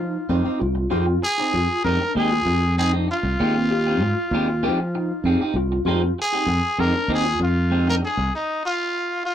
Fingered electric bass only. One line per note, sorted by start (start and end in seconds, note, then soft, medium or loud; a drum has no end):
0.00 0.16 F3 medium
0.29 0.42 F2 medium
0.46 muted fingered electric bass stroke soft
0.61 0.85 C2 medium
0.92 1.16 F2 medium
1.54 1.66 F2 medium
1.84 1.97 F2 medium
2.15 2.39 D#2 medium
2.45 3.06 F2 medium
3.23 3.35 C2 medium
3.40 4.01 D#2 medium
4.01 4.13 G#2 medium
4.31 4.64 D#2 medium
4.63 5.11 F3 medium
5.24 5.36 F2 medium
5.39 muted fingered electric bass stroke soft
5.54 5.78 C2 medium
5.85 6.09 F2 medium
6.46 6.59 F2 medium
6.78 6.91 F2 medium
7.08 7.33 D#2 medium
7.40 8.00 F2 medium
8.17 8.29 C2 medium